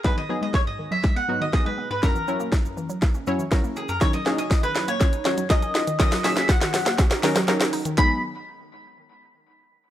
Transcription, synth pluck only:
\new Staff \with { instrumentName = "Synth pluck" } { \clef bass \time 4/4 \key gis \minor \tempo 4 = 121 gis,16 dis16 fis16 gis16 r16 gis,16 dis16 fis16 gis16 b16 gis,16 dis16 r16 gis16 b16 gis,16 | fis,16 e16 fis16 ais16 r16 fis,16 e16 fis16 ais16 cis'16 fis,16 e16 r16 ais16 cis'16 fis,16 | dis16 fis16 ais16 cis'16 r16 dis16 fis16 ais16 cis'16 dis'16 dis16 fis16 r16 cis'16 dis'16 dis16 | dis16 fis16 ais16 cis'16 r16 dis16 fis16 ais16 cis'16 dis'16 dis16 fis16 r16 cis'16 dis'16 dis16 |
<fis gis b dis'>8 r2. r8 | }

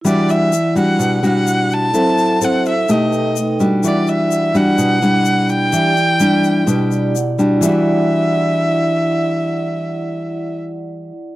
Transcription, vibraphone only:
\new Staff \with { instrumentName = "Vibraphone" } { \time 4/4 \key e \minor \tempo 4 = 127 << { r1 | r1 | r1 | r2 r8 d''8 fis''8 a''8 |
r1 | r1 | } \\ { <e' d'' fis''>1 | <e' a' c'' fis''>2 <dis' a' b' g''>2 | <e' d'' fis''>1 | <e' g' d''>1 |
<e' d'' fis''>1~ | <e' d'' fis''>1 | } >> }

